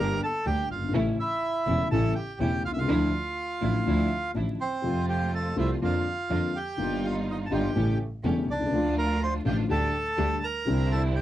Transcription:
Already playing: double bass G1, upright piano G2 D3 G3 A#3 G4, string section A#3 D4 G4
0.00 upright piano G1, bandoneon A#4 A#5
0.23 bandoneon A4 A5
0.45 upright piano D2 D3 G3 A#3 G4, double bass D2, string section A#3 D4 G4, bandoneon G4 G5
0.70 double bass G1, bandoneon F4 F5
0.75 upright piano F#1
0.82 upright piano G1
0.88 upright piano G#1
0.93 upright piano A1 A2 C#3 E3 A3 E4, double bass A1, string section A3 C#4 E4
1.20 bandoneon E4 E5
1.66 upright piano E1 E2 C#3 E3 A3 E4, double bass E1, string section A3 C#4 E4
1.91 double bass A1, upright piano A1 A2 C#3 E3 A3 E4, string section A3 C#4 E4, bandoneon A4 A5
2.15 bandoneon G4 G5
2.39 upright piano E1 E2 C#3 E3 A3 E4, double bass E1, string section A3 C#4 E4, bandoneon G4 G5
2.65 double bass C2, bandoneon F4 F5
2.70 upright piano B1, bandoneon E5
2.76 upright piano C2, bandoneon F4 F5
2.81 upright piano C#2
2.87 upright piano D2 D3 F3 A3 E4, double bass D2, string section F3 D4 E4
3.61 upright piano A1 A2 D3 F3 A3 E4, double bass A1, string section F3 D4 E4
3.86 upright piano D2 D3 F3 A3 E4, double bass D2, string section F3 D4 E4
4.34 upright piano A1 A2 D3 F3 A3 E4, double bass A1, string section F3 D4 E4
4.61 bandoneon C4 C5
4.82 upright piano F2 C3 F3 A3, double bass F2, string section A3 C4 F4
4.86 upright piano F4
5.09 bandoneon G4 G5
5.34 bandoneon A4 A5
5.56 upright piano C2 C3 F3 A3 F4, double bass C2, string section A3 C4 F4, bandoneon E4
5.60 bandoneon E5
5.81 double bass F2, upright piano F2 D3 F3 A#3 F4, string section A#3 D4 F4, bandoneon F4 F5
6.30 double bass F2, upright piano F2 D3 F3 A#3 F4, string section A#3 D4 F4
6.56 bandoneon G4 G5
6.77 upright piano G1 G2 D#3 G3 A#3 F4, double bass G1, string section G3 D#4 F4
7.05 bandoneon F4 F5
7.30 bandoneon D#4 D#5
7.46 bandoneon A5
7.51 upright piano G1 G2 D#3 G3 A#3 F4, double bass G1, string section G3 D#4 F4, bandoneon G4 G5
7.74 upright piano A1 A2 C#3 G3 A3 E4, double bass A1, string section A3 C#4 G4
8.23 upright piano E1 E2 C#3 G3 A3 E4, double bass E1, string section A3 C#4 G4
8.49 double bass C2, bandoneon D4 D5
8.55 upright piano B1
8.60 upright piano C2
8.65 upright piano C#2
8.71 double bass D2, upright piano D2 D3 F3 A3, string section A3 D4 F4
8.75 upright piano F4
8.98 bandoneon A#4 A#5
9.23 bandoneon C5 C6
9.45 upright piano A1 A2 D3 F3 A3 F4, double bass A1, string section A3 D4 F4, bandoneon G4 G5
9.69 double bass D2, upright piano D2 D3 G3 A3 G4, string section A3 D4 G4, bandoneon A4 A5
10.17 upright piano D2 D3 G3 A3 G4, double bass D2, string section A3 D4 G4
10.44 bandoneon A#4 A#5
10.65 double bass C2, upright piano C2 C3 D3 G3 C4, string section C4 D4 E4
10.70 upright piano E4
10.92 bandoneon A4 A5
11.16 bandoneon G4 G5

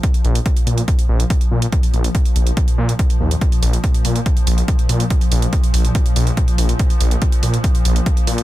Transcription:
Already playing: synth drone A#2 F3
0.03 kick, closed hi-hat
0.14 closed hi-hat
0.24 detuned saw bass A#1, closed hi-hat
0.35 closed hi-hat
0.46 kick, closed hi-hat
0.57 closed hi-hat
0.67 detuned saw bass A#2, closed hi-hat
0.78 closed hi-hat
0.88 kick, closed hi-hat
0.99 closed hi-hat
1.09 detuned saw bass A#1
1.20 closed hi-hat
1.30 kick, closed hi-hat
1.41 closed hi-hat
1.51 detuned saw bass A#2
1.62 closed hi-hat
1.72 kick, closed hi-hat
1.83 closed hi-hat
1.94 detuned saw bass A#1, closed hi-hat
2.04 closed hi-hat
2.15 kick, closed hi-hat
2.25 closed hi-hat
2.36 detuned saw bass A#1, closed hi-hat
2.47 closed hi-hat
2.57 kick, closed hi-hat
2.68 closed hi-hat
2.78 detuned saw bass A#2
2.89 closed hi-hat
2.99 kick, closed hi-hat
3.10 closed hi-hat
3.20 detuned saw bass D#2
3.31 closed hi-hat
3.41 kick, closed hi-hat
3.52 closed hi-hat
3.63 detuned saw bass A#1, open hi-hat
3.73 closed hi-hat
3.84 kick, closed hi-hat
3.94 closed hi-hat
4.05 detuned saw bass A#2, open hi-hat
4.16 closed hi-hat
4.26 kick, closed hi-hat
4.37 closed hi-hat
4.47 detuned saw bass A#1, open hi-hat
4.58 closed hi-hat
4.68 kick, closed hi-hat
4.79 closed hi-hat
4.89 detuned saw bass A#2, open hi-hat
5.00 closed hi-hat
5.10 kick, closed hi-hat
5.21 closed hi-hat
5.32 detuned saw bass A#1, open hi-hat
5.42 closed hi-hat
5.53 kick, closed hi-hat
5.64 closed hi-hat
5.74 detuned saw bass A#1, open hi-hat
5.85 closed hi-hat
5.95 kick, closed hi-hat
6.06 closed hi-hat
6.16 detuned saw bass A#1, open hi-hat
6.27 closed hi-hat
6.37 kick, closed hi-hat
6.48 closed hi-hat
6.58 detuned saw bass A#1, open hi-hat
6.69 closed hi-hat
6.79 kick, closed hi-hat
6.90 closed hi-hat
7.01 detuned saw bass A#1, open hi-hat
7.11 closed hi-hat
7.22 kick, closed hi-hat
7.32 closed hi-hat
7.43 detuned saw bass A#2, open hi-hat
7.54 closed hi-hat
7.64 kick, closed hi-hat
7.75 closed hi-hat
7.85 detuned saw bass A#1, open hi-hat
7.96 closed hi-hat
8.06 kick, closed hi-hat
8.17 closed hi-hat
8.27 detuned saw bass A#2, open hi-hat
8.38 closed hi-hat

